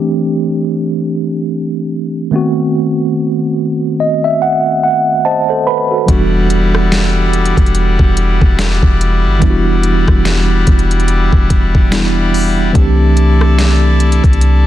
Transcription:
Already playing: E3 A3 C4 D4 G4
2.31 D#3 A3 B3 C4
2.36 F#4
4.00 D#5
4.24 E5
4.42 F#5
4.83 F#5
5.25 C5 D#5 A5
5.49 A4 C5
5.67 B4 B5
5.91 F#4 A4
6.06 E1 E3 G3 B3 D4 E4 D5 F#5, kick, closed hi-hat
6.11 F#4
6.50 closed hi-hat
6.75 cross-stick
6.92 snare, closed hi-hat
7.33 closed hi-hat
7.45 closed hi-hat
7.57 E1, kick, closed hi-hat
7.66 closed hi-hat
7.75 closed hi-hat
7.99 E1, kick
8.17 closed hi-hat
8.41 E1, kick
8.59 snare, closed hi-hat
8.83 E1, kick
9.01 closed hi-hat
9.25 G1
9.39 E1 E3 G3 B3 D4, kick, closed hi-hat
9.44 E4
9.50 F#4
9.83 closed hi-hat
10.08 E1, kick, cross-stick
10.25 snare, closed hi-hat
10.67 E1, kick, closed hi-hat
10.79 closed hi-hat
10.91 closed hi-hat
11.00 closed hi-hat
11.08 closed hi-hat
11.33 E1, kick
11.50 kick, closed hi-hat
11.75 kick
11.91 E3 G3 B3 D4 E4, snare, closed hi-hat
12.34 open hi-hat
12.73 C2 E3 A3 C4 D4 A4 A5, kick, closed hi-hat
12.77 G4
13.17 closed hi-hat
13.41 cross-stick
13.59 snare, closed hi-hat
14.00 closed hi-hat
14.12 closed hi-hat
14.24 C2, kick, closed hi-hat
14.33 closed hi-hat
14.41 closed hi-hat

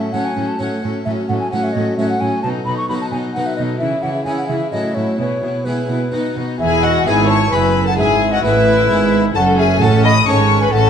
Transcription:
Already playing: A2 F#3 C#4 A4 E5
0.13 A2 F#3 C#4 F#4 A4 C#5 F#5
0.25 G#5
0.36 A2 F#3 C#4 A4
0.48 A5
0.59 A2 F#3 C#4 F#4 A4 C#5
0.82 A2 F#3 C#4 A4
1.05 A2 F#3 C#4 A4 E5
1.28 A2 F#3 C#4 A4 F#5
1.40 G#5
1.51 A2 F#3 C#4 F#4 A4 C#5 F#5
1.63 E5
1.73 A2 F#3 C#4 A4 D#5
1.97 A2 F#3 C#4 F#4 A4 C#5 E5
2.09 F#5
2.20 A2 F#3 C#4 A4 G#5
2.43 B2 F#3 D#4 A4 A5
2.65 B2 F#3 D#4 A4 B5
2.78 C#6
2.89 B2 F#3 D#4 F#4 A4 B4 B5
3.01 A5
3.11 B2 F#3 D#4 A4 G#5
3.34 B2 F#3 D#4 F#4 A4 B4 F#5
3.47 E5
3.56 B2 F#3 D#4 A4 D#5
3.79 C#3 E3 E4 G#4 E5
4.03 C#3 E3 E4 G#4 F#5
4.14 E5
4.24 C#3 E3 C#4 E4 G#4 G#5
4.37 F#5
4.47 C#3 E3 E4 G#4 E5
4.71 A2 F#3 C#4 E4 F#4 A4 D#5
4.95 A2 F#3 E4 A4 C#5
5.18 B2 B3 E4 G#4 C#5
5.42 B2 B3 E4 G#4
5.65 B2 G#3 B3 E4 G#4 B4
5.88 B2 B3 E4 G#4
6.12 B2 B3 D#4 F#4
6.36 B2 B3 D#4 F#4
6.59 E1 E2 E4 G#4 E5 G#5
6.83 F#4 D#5 F#5
7.06 G#1 G#2 B3 E4 G#4 E5 G#5
7.28 C#5 A5 C#6
7.51 F#1 F#2 B3 E4 G#4 B4 G#5 B5
7.86 A4 F#5 A5
7.97 G#1 G#2 G#3 E4 G#4 E5 G#5
8.32 F#4 D#5 F#5
8.43 A1 A2 B3 E4 G#4 B4 E5
8.89 G#1 G#2 B3 E4 G#4
9.35 F#1 F#2 C#4 A4 F#5 A5
9.58 G#4 E5 G#5
9.81 A1 A2 C#4 F#4 A4 F#5 A5
10.04 D#5 B5 D#6
10.27 G#1 G#2 C#4 F#4 A4 C#5 A5 C#6
10.61 B4 G#5 B5
10.72 A1 A2 C#4 A4 F#5 A5

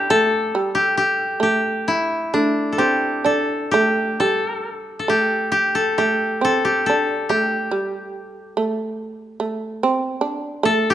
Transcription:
Already playing: G4
0.10 A3 A4
0.55 G3
0.75 G4
0.97 G4
1.40 A3 G4
1.88 E4
2.34 A3 D4
2.72 A4
2.78 C4 G4
3.24 D4 A4
3.71 A3 G4
4.20 G3 A4
4.99 A4
5.08 A3 G4
5.52 G4
5.75 A4
5.98 A3 G4
6.41 C4 A4
6.65 G4
6.86 D4 A4
7.29 A3 G4
7.71 G3
8.57 A3
9.40 A3
9.83 C4
10.21 D4
10.63 A3 A4
10.90 G4

